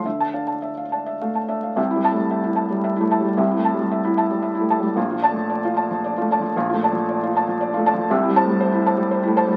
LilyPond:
<<
  \new Staff \with { instrumentName = "Felt piano" } { \time 3/4 \key c \mixolydian \tempo 4 = 114 << { r16 a''8 r2 r16 | r8 a''16 r2 r16 | r2. | r8 a''16 r2 r16 |
r2. | r8 a''16 r2 r16 | } \\ { e''8 f''16 a''16 e''16 f''16 a''16 e''16 f''16 a''16 e''16 f''16 | e''16 e'16 e''16 g16 e''16 e'16 <e'' a''>16 g16 e''16 e'16 <e'' a''>16 g16 | e''16 e'16 <e'' a''>16 g16 e''16 e'16 <e'' a''>16 g16 e''16 e'16 <e'' a''>16 g16 | f''16 f'16 d''16 f16 d''16 f'16 <d'' a''>16 f16 d''16 f'16 <d'' a''>16 f16 |
f''16 f'16 <d'' a''>16 f16 d''16 f'16 <d'' a''>16 f16 d''16 f'16 <d'' a''>16 f16 | e''16 e'16 c''16 g16 c''16 e'16 <c'' a''>16 g16 c''16 e'16 <c'' a''>16 g16 | } >> }
  \new Staff \with { instrumentName = "Felt piano" } { \clef bass \time 3/4 \key c \mixolydian d8 d'4 d'8 a8 d'8 | \tuplet 3/2 { <c, c>8 g8 a8 } r4 \tuplet 3/2 { r8 a8 g8 } | \tuplet 3/2 { <c, c>8 a8 g8 } r4 \tuplet 3/2 { r8 a8 g8 } | \tuplet 3/2 { <bes,, bes,>8 f8 a8 } r4 \tuplet 3/2 { r8 a8 f8 } |
\tuplet 3/2 { <bes,, bes,>8 a8 f8 } r4 \tuplet 3/2 { r8 a8 f8 } | \tuplet 3/2 { <c, c>8 g8 a8 } r4 \tuplet 3/2 { r8 a8 g8 } | }
>>